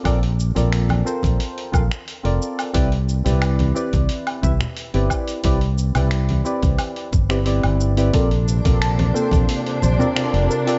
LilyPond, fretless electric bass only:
\new Staff \with { instrumentName = "Fretless electric bass" } { \clef bass \time 4/4 \key bes \major \tempo 4 = 89 bes,,8. bes,,8. r16 bes,,16 r8 bes,,16 r8 f,,16 r8 | c,8. c,8. r16 c,16 r8 c,16 r8 g,,16 r8 | c,8. c,8. r16 c,16 r8 g,,8. g,,8. | bes,,8. bes,,8. r16 bes,,16 r8 bes,,16 r8 f,,16 r8 | }